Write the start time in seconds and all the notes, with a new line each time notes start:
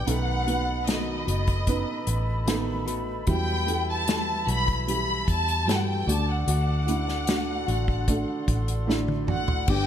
0.06 B1 B2 D#3 A3 B3 D#4 F#4 A4 D#5 A5 B5, closed hi-hat
0.10 F#5
0.47 A3 B3 D#4 F#4 B4, closed hi-hat
0.86 D#3 A3 B3 D#4 F#4 A4 D#5, snare, closed hi-hat
1.26 F#1 A3 B3 F#4, closed hi-hat
1.47 kick, closed hi-hat
1.67 B3 D#4 B4, kick, closed hi-hat
2.07 A1, closed hi-hat
2.46 D#3 A3 B3 D#4 F#4 A4, snare, closed hi-hat
2.86 A3 B3 F#4, closed hi-hat
3.26 E2 B2 E3 F#3 G3 B3 E4 E5 G5, kick, closed hi-hat
3.66 E3 G3 B3 E4 F#4 A4, closed hi-hat
3.91 A5
4.07 E3 G3 B3 E4 F#4 A4, snare, closed hi-hat
4.46 B1 E3 G3 B3 F#4, closed hi-hat
4.51 B5
4.68 kick, closed hi-hat
4.87 G3 E4 G4 B5, closed hi-hat
5.28 E2 A5, kick, closed hi-hat
5.48 closed hi-hat
5.67 G2 E3 G3 B3 E4 F#4 A4 G5, snare, closed hi-hat
5.75 F#5
5.84 G5
6.07 D2 D3 A3 D4 F#4 A4 D5 A5 D6, closed hi-hat
6.31 F#5
6.46 D2 D3 A3 D4 F#4, closed hi-hat
6.87 A3 D4 E4 F#4, closed hi-hat
7.09 snare
7.27 D3 A3 D4 F#4, snare, closed hi-hat
7.67 A1 A3 D4 F#4 C6, closed hi-hat
7.88 kick
8.08 A3 D4 A4, kick, closed hi-hat
8.48 A1, kick, closed hi-hat
8.68 closed hi-hat
8.87 D3 A3 D4 E4 F#4, snare
9.08 high tom
9.27 A3 D4 F#4 F#5, mid tom
9.48 floor tom
9.67 G1 G2 D3 G3 B3 D4 G4 B4 D5 G5 D6, kick, crash